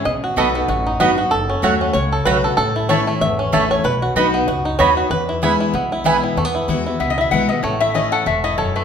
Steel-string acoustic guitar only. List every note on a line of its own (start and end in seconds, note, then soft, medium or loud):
0.05 0.66 B2 medium
0.36 0.54 F#3 medium
0.36 0.54 B3 medium
0.36 0.54 D#4 loud
0.36 0.53 F#4 loud
0.54 0.69 D#4 medium
0.54 0.68 F#4 medium
0.68 1.29 F#2 medium
1.00 1.17 F#3 medium
1.00 1.17 B3 medium
1.00 1.18 D#4 medium
1.00 1.15 F#4 loud
1.17 1.32 D#4 soft
1.17 1.31 F#4 medium
1.31 1.92 F#2 medium
1.62 1.93 F#3 medium
1.62 1.93 A3 medium
1.62 1.94 C#4 medium
1.62 1.94 F#4 loud
1.94 2.55 C#3 loud
2.25 2.43 F#3 medium
2.25 2.43 A3 loud
2.25 2.44 C#4 loud
2.25 2.42 F#4 loud
2.43 2.58 C#4 soft
2.43 2.57 F#4 medium
2.58 3.19 A2 loud
2.89 3.06 E3 loud
2.89 3.07 A3 medium
2.89 3.07 C#4 medium
2.89 3.06 E4 loud
3.07 3.22 C#4 medium
3.07 3.21 E4 medium
3.22 3.82 E2 loud
3.52 3.83 E3 medium
3.52 3.83 A3 loud
3.52 3.84 C#4 medium
3.52 3.84 E4 medium
3.84 4.45 B2 loud
4.16 4.46 F#3 loud
4.16 4.47 B3 loud
4.16 4.47 D#4 loud
4.16 4.47 F#4 loud
4.48 5.08 F#2 loud
4.79 5.09 F#3 medium
4.79 5.10 B3 loud
4.79 5.10 D#4 medium
4.79 5.10 F#4 loud
5.11 5.71 E2 medium
5.42 5.72 E3 medium
5.42 5.73 G#3 loud
5.42 5.73 B3 loud
5.42 5.73 E4 loud
5.74 6.34 B2 medium
6.04 6.35 E3 medium
6.04 6.35 G#3 loud
6.04 6.36 B3 loud
6.04 6.36 E4 medium
6.37 6.98 E2 medium
6.68 6.85 E3 medium
6.68 6.86 G#3 loud
6.68 6.86 B3 loud
6.68 6.84 F#4 loud
6.86 7.01 B3 soft
6.86 7.00 F#4 medium
7.00 7.61 B2 medium
7.32 7.49 E3 medium
7.32 7.49 G#3 loud
7.32 7.49 B3 medium
7.32 7.47 F#4 loud
7.49 7.64 B3 medium
7.49 7.63 F#4 medium
7.63 8.24 A2 medium
7.94 8.25 E3 medium
7.94 8.25 A3 medium
7.94 8.26 C#4 medium
7.94 8.26 E4 medium
8.26 8.57 G#2 medium
8.58 8.84 F#2 loud